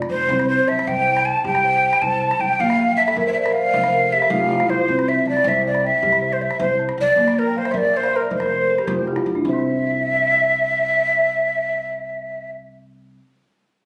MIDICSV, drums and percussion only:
0, 0, Header, 1, 2, 480
1, 0, Start_track
1, 0, Tempo, 380711
1, 373, Time_signature, 12, 3, 24, 8
1, 17465, End_track
2, 0, Start_track
2, 0, Title_t, "Calabash"
2, 25, Note_on_c, 9, 38, 48
2, 151, Note_off_c, 9, 38, 0
2, 151, Note_on_c, 9, 38, 19
2, 272, Note_off_c, 9, 38, 0
2, 272, Note_on_c, 9, 38, 20
2, 380, Note_on_c, 9, 36, 62
2, 398, Note_off_c, 9, 38, 0
2, 498, Note_on_c, 9, 38, 51
2, 506, Note_off_c, 9, 36, 0
2, 624, Note_off_c, 9, 38, 0
2, 997, Note_on_c, 9, 38, 54
2, 1108, Note_on_c, 9, 36, 65
2, 1123, Note_off_c, 9, 38, 0
2, 1234, Note_off_c, 9, 36, 0
2, 1471, Note_on_c, 9, 38, 50
2, 1597, Note_off_c, 9, 38, 0
2, 1828, Note_on_c, 9, 36, 79
2, 1828, Note_on_c, 9, 38, 25
2, 1953, Note_off_c, 9, 38, 0
2, 1953, Note_on_c, 9, 38, 55
2, 1954, Note_off_c, 9, 36, 0
2, 2079, Note_off_c, 9, 38, 0
2, 2431, Note_on_c, 9, 38, 55
2, 2544, Note_on_c, 9, 36, 73
2, 2557, Note_off_c, 9, 38, 0
2, 2670, Note_off_c, 9, 36, 0
2, 2914, Note_on_c, 9, 38, 55
2, 3035, Note_off_c, 9, 38, 0
2, 3035, Note_on_c, 9, 38, 25
2, 3161, Note_off_c, 9, 38, 0
2, 3267, Note_on_c, 9, 36, 73
2, 3393, Note_off_c, 9, 36, 0
2, 3403, Note_on_c, 9, 38, 53
2, 3529, Note_off_c, 9, 38, 0
2, 3881, Note_on_c, 9, 38, 53
2, 4000, Note_on_c, 9, 36, 63
2, 4007, Note_off_c, 9, 38, 0
2, 4126, Note_off_c, 9, 36, 0
2, 4358, Note_on_c, 9, 38, 57
2, 4484, Note_off_c, 9, 38, 0
2, 4714, Note_on_c, 9, 36, 76
2, 4714, Note_on_c, 9, 38, 23
2, 4836, Note_off_c, 9, 38, 0
2, 4836, Note_on_c, 9, 38, 52
2, 4840, Note_off_c, 9, 36, 0
2, 4962, Note_off_c, 9, 38, 0
2, 5321, Note_on_c, 9, 38, 52
2, 5437, Note_on_c, 9, 36, 61
2, 5448, Note_off_c, 9, 38, 0
2, 5563, Note_off_c, 9, 36, 0
2, 5800, Note_on_c, 9, 38, 50
2, 5920, Note_off_c, 9, 38, 0
2, 5920, Note_on_c, 9, 38, 20
2, 6046, Note_off_c, 9, 38, 0
2, 6167, Note_on_c, 9, 36, 61
2, 6290, Note_on_c, 9, 38, 50
2, 6293, Note_off_c, 9, 36, 0
2, 6416, Note_off_c, 9, 38, 0
2, 6768, Note_on_c, 9, 38, 44
2, 6889, Note_on_c, 9, 36, 57
2, 6894, Note_off_c, 9, 38, 0
2, 7015, Note_off_c, 9, 36, 0
2, 7244, Note_on_c, 9, 38, 49
2, 7370, Note_off_c, 9, 38, 0
2, 7605, Note_on_c, 9, 36, 71
2, 7605, Note_on_c, 9, 38, 21
2, 7723, Note_off_c, 9, 38, 0
2, 7723, Note_on_c, 9, 38, 49
2, 7731, Note_off_c, 9, 36, 0
2, 7849, Note_off_c, 9, 38, 0
2, 8204, Note_on_c, 9, 38, 49
2, 8323, Note_on_c, 9, 36, 69
2, 8330, Note_off_c, 9, 38, 0
2, 8449, Note_off_c, 9, 36, 0
2, 8684, Note_on_c, 9, 38, 51
2, 8802, Note_off_c, 9, 38, 0
2, 8802, Note_on_c, 9, 38, 22
2, 8928, Note_off_c, 9, 38, 0
2, 9053, Note_on_c, 9, 36, 65
2, 9053, Note_on_c, 9, 38, 22
2, 9175, Note_off_c, 9, 38, 0
2, 9175, Note_on_c, 9, 38, 53
2, 9179, Note_off_c, 9, 36, 0
2, 9295, Note_off_c, 9, 38, 0
2, 9295, Note_on_c, 9, 38, 22
2, 9421, Note_off_c, 9, 38, 0
2, 9650, Note_on_c, 9, 38, 47
2, 9761, Note_on_c, 9, 36, 65
2, 9776, Note_off_c, 9, 38, 0
2, 9887, Note_off_c, 9, 36, 0
2, 10131, Note_on_c, 9, 38, 49
2, 10257, Note_off_c, 9, 38, 0
2, 10357, Note_on_c, 9, 38, 20
2, 10471, Note_off_c, 9, 38, 0
2, 10471, Note_on_c, 9, 36, 71
2, 10471, Note_on_c, 9, 38, 20
2, 10592, Note_off_c, 9, 38, 0
2, 10592, Note_on_c, 9, 38, 48
2, 10597, Note_off_c, 9, 36, 0
2, 10718, Note_off_c, 9, 38, 0
2, 11075, Note_on_c, 9, 38, 47
2, 11187, Note_off_c, 9, 38, 0
2, 11187, Note_on_c, 9, 36, 63
2, 11187, Note_on_c, 9, 38, 20
2, 11313, Note_off_c, 9, 36, 0
2, 11313, Note_off_c, 9, 38, 0
2, 11436, Note_on_c, 9, 38, 21
2, 11551, Note_off_c, 9, 38, 0
2, 11551, Note_on_c, 9, 38, 48
2, 11677, Note_off_c, 9, 38, 0
2, 11790, Note_on_c, 9, 38, 19
2, 11914, Note_on_c, 9, 36, 84
2, 11916, Note_off_c, 9, 38, 0
2, 12040, Note_off_c, 9, 36, 0
2, 17465, End_track
0, 0, End_of_file